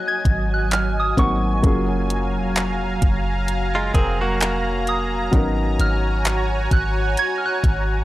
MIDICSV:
0, 0, Header, 1, 8, 480
1, 0, Start_track
1, 0, Tempo, 923077
1, 851, Time_signature, 4, 2, 24, 8
1, 4181, End_track
2, 0, Start_track
2, 0, Title_t, "Synth bell"
2, 0, Program_c, 0, 98
2, 40, Note_on_c, 0, 92, 99
2, 280, Note_on_c, 0, 90, 91
2, 282, Note_off_c, 0, 92, 0
2, 379, Note_off_c, 0, 90, 0
2, 379, Note_on_c, 0, 89, 94
2, 518, Note_off_c, 0, 89, 0
2, 518, Note_on_c, 0, 87, 89
2, 618, Note_off_c, 0, 87, 0
2, 619, Note_on_c, 0, 85, 81
2, 1554, Note_off_c, 0, 85, 0
2, 2541, Note_on_c, 0, 87, 85
2, 3020, Note_on_c, 0, 89, 98
2, 3030, Note_off_c, 0, 87, 0
2, 3498, Note_on_c, 0, 90, 97
2, 3510, Note_off_c, 0, 89, 0
2, 3718, Note_off_c, 0, 90, 0
2, 3738, Note_on_c, 0, 92, 111
2, 3834, Note_off_c, 0, 92, 0
2, 3837, Note_on_c, 0, 89, 80
2, 3875, Note_off_c, 0, 89, 0
2, 3877, Note_on_c, 0, 90, 106
2, 4181, Note_off_c, 0, 90, 0
2, 4181, End_track
3, 0, Start_track
3, 0, Title_t, "Analog synth pad"
3, 0, Program_c, 1, 89
3, 0, Note_on_c, 1, 54, 88
3, 0, Note_on_c, 1, 75, 77
3, 0, Note_on_c, 1, 80, 80
3, 831, Note_off_c, 1, 75, 0
3, 852, Note_on_c, 1, 82, 89
3, 853, Note_on_c, 1, 77, 74
3, 2749, Note_off_c, 1, 80, 0
3, 2750, Note_off_c, 1, 54, 0
3, 2753, Note_off_c, 1, 77, 0
3, 2768, Note_on_c, 1, 66, 82
3, 2768, Note_on_c, 1, 73, 75
3, 2769, Note_on_c, 1, 80, 90
3, 4181, Note_off_c, 1, 66, 0
3, 4181, Note_off_c, 1, 73, 0
3, 4181, Note_off_c, 1, 80, 0
3, 4181, Note_off_c, 1, 82, 0
3, 4181, End_track
4, 0, Start_track
4, 0, Title_t, "Celesta"
4, 0, Program_c, 2, 8
4, 2050, Note_on_c, 2, 70, 74
4, 2985, Note_off_c, 2, 70, 0
4, 4181, End_track
5, 0, Start_track
5, 0, Title_t, "Clean electric guitar"
5, 0, Program_c, 3, 27
5, 1950, Note_on_c, 3, 65, 76
5, 1953, Note_on_c, 3, 56, 68
5, 2046, Note_off_c, 3, 65, 0
5, 2047, Note_off_c, 3, 56, 0
5, 2051, Note_on_c, 3, 68, 90
5, 2054, Note_on_c, 3, 60, 77
5, 2183, Note_off_c, 3, 68, 0
5, 2185, Note_off_c, 3, 60, 0
5, 2190, Note_on_c, 3, 66, 76
5, 2193, Note_on_c, 3, 58, 68
5, 2750, Note_off_c, 3, 66, 0
5, 2752, Note_off_c, 3, 58, 0
5, 4181, End_track
6, 0, Start_track
6, 0, Title_t, "Grand piano"
6, 0, Program_c, 4, 0
6, 0, Control_c, 4, 64, 127
6, 0, Note_on_c, 4, 54, 68
6, 0, Note_on_c, 4, 58, 61
6, 0, Note_on_c, 4, 60, 62
6, 0, Note_on_c, 4, 63, 56
6, 0, Note_on_c, 4, 68, 73
6, 586, Note_off_c, 4, 54, 0
6, 589, Note_off_c, 4, 58, 0
6, 591, Note_off_c, 4, 60, 0
6, 593, Note_off_c, 4, 63, 0
6, 595, Note_off_c, 4, 68, 0
6, 608, Note_on_c, 4, 54, 51
6, 610, Note_on_c, 4, 58, 47
6, 613, Note_on_c, 4, 60, 51
6, 615, Note_on_c, 4, 63, 47
6, 617, Note_on_c, 4, 66, 58
6, 836, Note_off_c, 4, 54, 0
6, 840, Note_off_c, 4, 58, 0
6, 844, Note_on_c, 4, 54, 65
6, 848, Note_on_c, 4, 58, 60
6, 852, Note_off_c, 4, 60, 0
6, 853, Note_off_c, 4, 63, 0
6, 853, Note_on_c, 4, 61, 62
6, 854, Note_off_c, 4, 66, 0
6, 856, Control_c, 4, 64, 0
6, 857, Note_on_c, 4, 65, 62
6, 862, Note_on_c, 4, 68, 71
6, 944, Control_c, 4, 64, 127
6, 2747, Note_off_c, 4, 54, 0
6, 2749, Note_off_c, 4, 58, 0
6, 2751, Note_off_c, 4, 61, 0
6, 2753, Note_off_c, 4, 65, 0
6, 2756, Note_off_c, 4, 68, 0
6, 2763, Note_on_c, 4, 54, 65
6, 2767, Note_on_c, 4, 59, 62
6, 2771, Note_on_c, 4, 61, 62
6, 2776, Note_on_c, 4, 63, 59
6, 2778, Control_c, 4, 64, 0
6, 2781, Note_on_c, 4, 70, 74
6, 2878, Control_c, 4, 64, 127
6, 4181, Note_off_c, 4, 54, 0
6, 4181, Note_off_c, 4, 59, 0
6, 4181, Note_off_c, 4, 61, 0
6, 4181, Note_off_c, 4, 63, 0
6, 4181, Note_off_c, 4, 70, 0
6, 4181, End_track
7, 0, Start_track
7, 0, Title_t, "808-style bass"
7, 0, Program_c, 5, 38
7, 132, Note_on_c, 5, 32, 96
7, 592, Note_off_c, 5, 32, 0
7, 612, Note_on_c, 5, 32, 107
7, 842, Note_off_c, 5, 32, 0
7, 852, Note_on_c, 5, 30, 109
7, 1231, Note_on_c, 5, 29, 99
7, 1239, Note_off_c, 5, 30, 0
7, 1555, Note_off_c, 5, 29, 0
7, 1572, Note_on_c, 5, 30, 106
7, 2032, Note_off_c, 5, 30, 0
7, 2052, Note_on_c, 5, 29, 99
7, 2751, Note_off_c, 5, 29, 0
7, 2771, Note_on_c, 5, 32, 114
7, 3002, Note_off_c, 5, 32, 0
7, 3012, Note_on_c, 5, 32, 115
7, 3472, Note_off_c, 5, 32, 0
7, 3492, Note_on_c, 5, 32, 106
7, 3722, Note_off_c, 5, 32, 0
7, 3972, Note_on_c, 5, 32, 103
7, 4181, Note_off_c, 5, 32, 0
7, 4181, End_track
8, 0, Start_track
8, 0, Title_t, "Drums"
8, 131, Note_on_c, 9, 36, 94
8, 132, Note_on_c, 9, 42, 65
8, 183, Note_off_c, 9, 36, 0
8, 184, Note_off_c, 9, 42, 0
8, 371, Note_on_c, 9, 42, 81
8, 377, Note_on_c, 9, 39, 124
8, 423, Note_off_c, 9, 42, 0
8, 429, Note_off_c, 9, 39, 0
8, 611, Note_on_c, 9, 36, 89
8, 613, Note_on_c, 9, 42, 61
8, 663, Note_off_c, 9, 36, 0
8, 665, Note_off_c, 9, 42, 0
8, 851, Note_on_c, 9, 36, 127
8, 851, Note_on_c, 9, 42, 67
8, 903, Note_off_c, 9, 36, 0
8, 903, Note_off_c, 9, 42, 0
8, 1093, Note_on_c, 9, 42, 74
8, 1145, Note_off_c, 9, 42, 0
8, 1330, Note_on_c, 9, 42, 83
8, 1335, Note_on_c, 9, 39, 121
8, 1382, Note_off_c, 9, 42, 0
8, 1387, Note_off_c, 9, 39, 0
8, 1571, Note_on_c, 9, 36, 102
8, 1571, Note_on_c, 9, 42, 75
8, 1623, Note_off_c, 9, 36, 0
8, 1623, Note_off_c, 9, 42, 0
8, 1810, Note_on_c, 9, 42, 72
8, 1862, Note_off_c, 9, 42, 0
8, 2051, Note_on_c, 9, 36, 96
8, 2052, Note_on_c, 9, 42, 63
8, 2103, Note_off_c, 9, 36, 0
8, 2104, Note_off_c, 9, 42, 0
8, 2291, Note_on_c, 9, 42, 80
8, 2297, Note_on_c, 9, 39, 124
8, 2343, Note_off_c, 9, 42, 0
8, 2349, Note_off_c, 9, 39, 0
8, 2533, Note_on_c, 9, 42, 61
8, 2585, Note_off_c, 9, 42, 0
8, 2771, Note_on_c, 9, 36, 126
8, 2771, Note_on_c, 9, 42, 67
8, 2823, Note_off_c, 9, 36, 0
8, 2823, Note_off_c, 9, 42, 0
8, 3014, Note_on_c, 9, 42, 74
8, 3066, Note_off_c, 9, 42, 0
8, 3250, Note_on_c, 9, 42, 85
8, 3255, Note_on_c, 9, 39, 126
8, 3302, Note_off_c, 9, 42, 0
8, 3307, Note_off_c, 9, 39, 0
8, 3491, Note_on_c, 9, 36, 99
8, 3491, Note_on_c, 9, 42, 71
8, 3543, Note_off_c, 9, 36, 0
8, 3543, Note_off_c, 9, 42, 0
8, 3730, Note_on_c, 9, 42, 73
8, 3782, Note_off_c, 9, 42, 0
8, 3971, Note_on_c, 9, 36, 95
8, 3972, Note_on_c, 9, 42, 61
8, 4023, Note_off_c, 9, 36, 0
8, 4024, Note_off_c, 9, 42, 0
8, 4181, End_track
0, 0, End_of_file